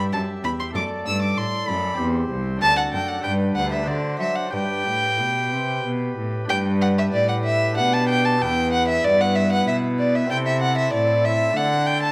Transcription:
Already playing: G2 G4 E5
0.13 F#2 A5
0.44 E2 B5
0.60 C6
0.72 F#2 A3 A4 D5 D6
0.77 F#2
1.06 G2 E6
1.22 D6
1.36 A2 C6
1.67 F#2 B5
1.94 C4 G4 C5
1.98 E2
2.30 C2
2.57 D4 F#4 A4
2.61 D2 A5
2.77 F#5
2.92 F#2 G5
3.08 F#5
3.19 D4 G4 B4
3.24 G2 G5
3.56 D2 F#5
3.72 E5
3.83 D4 F#4 C5
3.87 D3 D5
4.19 F#3 E5
4.36 F#5
4.48 D4 G4 B4
4.53 G2 G5
4.86 A2
5.19 B2
5.52 C3
5.84 B2
6.17 A2
6.46 D4 G4 B4 G5
6.50 G2
6.81 F#5
6.98 E5
7.13 A2 D5
7.29 F#5
7.44 E5
7.73 D4 G4 B4
7.78 B2 F#5
7.93 A5
8.09 G5
8.25 A5
8.37 B3 E4 B4
8.41 E2 G5
8.72 F#5
8.88 E5
9.05 G2 D5
9.21 F#5
9.35 E5
9.52 F#5
9.67 B2 E5
9.99 D5
10.15 E5
10.27 C4 E4 A4 G5
10.31 C3
10.47 E5
10.62 F#5
10.78 E5
10.93 A2 D5
11.24 E5
11.51 A3 D4 A4
11.56 D3 F#5
11.86 G5
12.03 A5

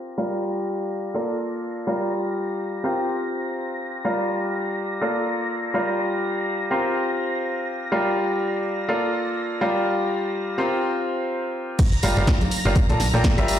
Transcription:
Already playing: C4 F4 G4 A#4 C5 F5 A#6
0.18 G3 F4 G4 A#4 D5 F5
1.14 A#3 F4 A4 A#4 D5 F5
1.87 G3 F4 G4 A#4 D5 F5
2.84 C4 F4 G4 A#4 C5 F5
4.05 G3 F4 G4 A#4 D5 F5
5.01 A#3 F4 A4 A#4 D5 F5
5.74 G3 F4 G4 A#4 D5 F5
6.71 C4 F4 G4 A#4 C5 F5
7.92 G3 F4 G4 A#4 D5 F5
8.89 A#3 F4 A4 A#4 D5 F5
9.61 G3 F4 G4 A#4 D5 F5
10.58 C4 F4 G4 A#4 C5 F5
11.79 A#5, kick, closed hi-hat, tambourine, crash
11.93 closed hi-hat, tambourine
12.03 G1 G3 F4 G4 A#4 D5 F5, open hi-hat, tambourine
12.17 G1 G3 F4 G4 A#4 D5 F5, closed hi-hat, tambourine
12.27 kick, snare, closed hi-hat, tambourine
12.41 closed hi-hat, tambourine, high conga
12.51 open hi-hat, tambourine
12.65 G1 A#3 F4 G4 A#4 D5 F5, closed hi-hat, tambourine
12.75 kick, closed hi-hat, tambourine
12.89 A#1 A#3 F4 A4 A#4 D5 A5, closed hi-hat, tambourine
13.00 snare, open hi-hat, tambourine, high conga
13.13 A#1 A#3 F4 A4 A#4 D5 G5, tambourine
13.24 kick, snare, closed hi-hat, tambourine
13.38 G1 G3 F4 G4 A#4 D5 E5, closed hi-hat, tambourine
13.48 open hi-hat, tambourine

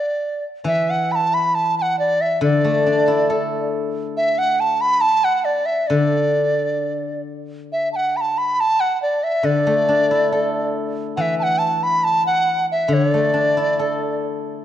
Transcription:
Already playing: D5
0.64 E3 E5
0.90 F#5
1.12 A5 B5
1.34 B5
1.55 A5
1.78 F#5 A5
1.99 D5
2.21 E5
2.41 D3 D5
2.64 A3
2.86 D4
3.08 E4
3.30 A4
4.17 E5
4.38 F#5
4.60 A5
4.81 B5
5.01 A5
5.24 F#5
5.45 D5
5.66 E5
5.87 D3 D5
7.72 E5
7.93 F#5 A5
8.17 B5
8.21 A5
8.38 B5
8.60 A5
8.80 F#5
9.02 D5
9.24 E5
9.43 D3 D5
9.67 A3
9.89 D4
10.11 E4
10.32 A4
11.17 E3 F#5
11.21 E5
11.39 A5
11.43 F#5
11.58 A5
11.83 B5
12.04 A5
12.27 F#5
12.72 E5
12.88 D3
12.93 C#5
13.10 A3 D5
13.34 D4
13.57 E4
13.79 A4

